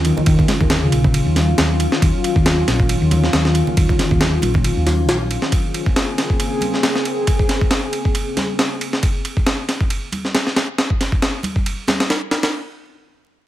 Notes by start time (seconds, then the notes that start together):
Already playing: D#2 D#3 F#3 C#4 F4
0.05 D#3, ride
0.16 D#3, low conga
0.26 D#2 D#3, kick, ride
0.39 kick, low conga
0.48 G#3, snare, ride
0.60 D#2 D#3, kick, low conga
0.70 D#3, snare, ride
0.82 C#3
0.92 A#1, ride
1.04 kick, low conga
1.14 ride
1.26 D#2
1.36 snare, ride, high conga
1.48 F#3
1.58 D#2, snare, ride
1.79 D#3, ride
1.92 D#3, snare
2.02 D#2, kick, ride
2.24 ride
2.36 D#2, kick
2.46 snare, ride
2.68 A#1, snare, ride
2.80 kick
2.89 ride
3.02 D#2
3.11 ride, high conga, low conga
3.24 snare
3.33 D#2, snare, ride
3.45 snare
3.55 ride
3.67 low conga
3.77 D#2, kick, ride
3.89 kick, low conga
3.99 snare, ride
4.11 D#2, kick, low conga
4.21 snare, ride
4.42 A#1, ride, high conga
4.54 kick, low conga
4.64 ride
4.77 D#2
4.87 snare, ride, high conga
5.08 A#1, snare, ride
5.30 C#3 A#3 C4 G#4, ride
5.42 snare
5.52 kick, ride
5.74 ride
5.86 kick
5.96 snare, ride
6.18 snare, ride
6.30 kick
6.40 ride
6.61 ride, high conga
6.74 snare
6.83 snare, ride
6.95 snare
7.05 ride
7.27 kick, ride
7.39 kick
7.49 snare, ride
7.61 kick
7.71 snare, ride
7.93 ride
8.05 kick
8.15 ride
8.37 snare, ride, high conga
8.59 snare, ride
8.81 ride
8.93 snare
9.03 kick, ride
9.25 ride
9.37 kick
9.46 snare, ride
9.69 snare, ride
9.81 kick
9.90 ride
10.12 ride, high conga
10.25 snare
10.35 snare, ride
10.47 snare
10.56 snare, ride
10.78 snare, ride
10.90 kick
11.01 snare, ride
11.12 kick
11.22 snare, ride
11.43 ride, high conga
11.56 kick
11.66 ride
11.88 snare, ride, high conga
12.00 snare, ride
12.10 snare, ride
12.31 snare, ride
12.43 snare, ride